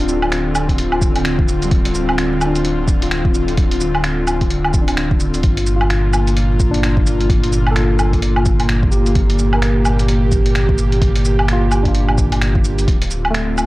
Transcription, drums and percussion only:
0.09 cabasa medium
0.22 low woodblock medium
0.32 finger snap loud
0.32 closed hi-hat medium
0.55 cabasa medium
0.55 low woodblock medium
0.69 kick medium
0.69 closed hi-hat soft
0.78 closed hi-hat medium
0.92 low woodblock medium
1.02 kick loud
1.02 cabasa medium
1.16 closed hi-hat medium
1.16 low woodblock soft
1.25 finger snap loud
1.25 closed hi-hat medium
1.39 kick loud
1.48 cabasa medium
1.62 closed hi-hat soft
1.62 cabasa soft
1.71 kick loud
1.71 closed hi-hat medium
1.85 closed hi-hat medium
1.95 cabasa medium
2.09 low woodblock medium
2.18 finger snap loud
2.18 closed hi-hat medium
2.41 cabasa medium
2.41 low woodblock medium
2.56 closed hi-hat soft
2.56 cabasa soft
2.65 closed hi-hat medium
2.88 kick loud
2.88 cabasa medium
3.02 closed hi-hat medium
3.11 finger snap loud
3.11 closed hi-hat medium
3.25 kick loud
3.34 cabasa medium
3.48 closed hi-hat soft
3.57 kick loud
3.57 closed hi-hat medium
3.71 closed hi-hat medium
3.81 cabasa medium
3.95 low woodblock medium
4.04 finger snap loud
4.04 closed hi-hat medium
4.27 cabasa medium
4.27 low woodblock medium
4.41 kick medium
4.41 closed hi-hat soft
4.50 closed hi-hat medium
4.65 low woodblock medium
4.74 kick loud
4.74 cabasa medium
4.88 closed hi-hat medium
4.88 low woodblock soft
4.97 finger snap loud
4.97 closed hi-hat medium
5.11 kick loud
5.20 cabasa medium
5.34 closed hi-hat soft
5.34 cabasa soft
5.43 kick loud
5.43 closed hi-hat medium
5.57 closed hi-hat medium
5.67 cabasa medium
5.81 low woodblock medium
5.90 finger snap loud
5.90 closed hi-hat medium
6.13 cabasa medium
6.13 low woodblock medium
6.27 closed hi-hat soft
6.27 cabasa soft
6.37 closed hi-hat medium
6.60 kick loud
6.60 cabasa medium
6.74 closed hi-hat medium
6.83 finger snap loud
6.83 closed hi-hat medium
6.97 kick loud
7.06 cabasa medium
7.20 closed hi-hat soft
7.30 kick loud
7.30 closed hi-hat medium
7.43 closed hi-hat medium
7.53 cabasa medium
7.67 low woodblock medium
7.76 finger snap loud
7.76 closed hi-hat medium
7.99 cabasa medium
7.99 low woodblock medium
8.13 kick medium
8.13 closed hi-hat soft
8.22 closed hi-hat medium
8.36 low woodblock medium
8.46 kick loud
8.46 cabasa medium
8.60 closed hi-hat medium
8.60 low woodblock soft
8.69 finger snap loud
8.69 closed hi-hat medium
8.83 kick loud
8.92 cabasa medium
9.06 closed hi-hat soft
9.06 cabasa soft
9.15 kick loud
9.15 closed hi-hat medium
9.30 closed hi-hat medium
9.39 cabasa medium
9.53 low woodblock medium
9.62 finger snap loud
9.62 closed hi-hat medium
9.85 cabasa medium
9.85 low woodblock medium
9.99 closed hi-hat soft
9.99 cabasa soft
10.08 closed hi-hat medium
10.32 kick loud
10.32 cabasa medium
10.46 closed hi-hat medium
10.55 finger snap loud
10.55 closed hi-hat medium
10.69 kick loud
10.78 cabasa medium
10.92 closed hi-hat soft
11.02 kick loud
11.02 closed hi-hat medium
11.15 closed hi-hat medium
11.25 cabasa medium
11.39 low woodblock medium
11.48 finger snap loud
11.48 closed hi-hat medium
11.72 cabasa medium
11.72 low woodblock medium
11.85 kick medium
11.85 closed hi-hat soft
11.95 closed hi-hat medium
12.09 low woodblock medium
12.18 kick loud
12.18 cabasa medium
12.32 closed hi-hat medium
12.32 low woodblock soft
12.41 finger snap loud
12.41 closed hi-hat medium
12.55 kick loud
12.64 cabasa medium
12.78 closed hi-hat soft
12.78 cabasa soft
12.88 kick loud
12.88 closed hi-hat medium
13.02 closed hi-hat medium
13.11 cabasa medium
13.25 low woodblock medium
13.34 finger snap loud
13.34 closed hi-hat medium
13.58 cabasa medium
13.58 low woodblock medium

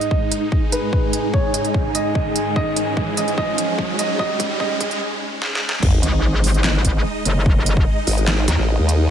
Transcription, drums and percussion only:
0.01 closed hi-hat soft
0.11 kick medium
0.32 closed hi-hat medium
0.52 kick medium
0.72 closed hi-hat medium
0.93 kick loud
1.13 closed hi-hat medium
1.34 kick medium
1.54 closed hi-hat medium
1.65 closed hi-hat soft
1.74 kick loud
1.95 closed hi-hat medium
2.15 kick loud
2.36 closed hi-hat medium
2.56 kick loud
2.76 closed hi-hat medium
2.97 kick loud
3.17 closed hi-hat medium
3.28 closed hi-hat soft
3.38 kick loud
3.58 closed hi-hat medium
3.78 kick loud
3.99 closed hi-hat medium
4.19 kick loud
4.40 kick loud
4.40 closed hi-hat medium
4.60 kick loud
4.81 kick loud
4.81 closed hi-hat medium
4.91 closed hi-hat soft
5.42 snare medium
5.55 snare medium
5.69 snare loud
5.83 kick loud
5.83 crash loud
6.03 closed hi-hat medium
6.44 open hi-hat medium
6.54 closed hi-hat soft
6.64 snare loud
6.64 clap medium
6.85 kick medium
6.85 closed hi-hat medium
7.25 closed hi-hat medium
7.46 kick loud
7.66 closed hi-hat medium
7.77 kick loud
8.07 open hi-hat medium
8.18 closed hi-hat soft
8.28 snare loud
8.28 clap medium
8.48 snare medium
8.48 closed hi-hat medium
8.89 closed hi-hat medium

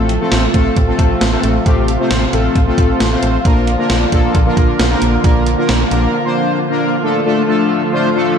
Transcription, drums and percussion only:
0.09 closed hi-hat medium
0.32 snare loud
0.32 closed hi-hat medium
0.54 kick medium
0.54 closed hi-hat medium
0.76 kick medium
0.76 closed hi-hat medium
0.99 kick medium
0.99 closed hi-hat medium
1.21 snare loud
1.21 closed hi-hat medium
1.44 closed hi-hat medium
1.66 kick loud
1.66 closed hi-hat medium
1.88 closed hi-hat medium
2.11 snare loud
2.11 closed hi-hat medium
2.33 closed hi-hat medium
2.56 kick medium
2.56 closed hi-hat medium
2.78 kick medium
2.78 closed hi-hat medium
3.00 snare loud
3.00 closed hi-hat medium
3.23 closed hi-hat medium
3.45 kick loud
3.45 closed hi-hat medium
3.67 closed hi-hat medium
3.90 snare loud
3.90 closed hi-hat medium
4.12 kick medium
4.12 closed hi-hat medium
4.35 kick medium
4.35 closed hi-hat medium
4.57 kick loud
4.57 closed hi-hat medium
4.79 snare loud
4.79 closed hi-hat medium
5.02 closed hi-hat medium
5.24 kick loud
5.24 closed hi-hat medium
5.46 closed hi-hat medium
5.69 snare loud
5.69 closed hi-hat medium
5.91 closed hi-hat medium

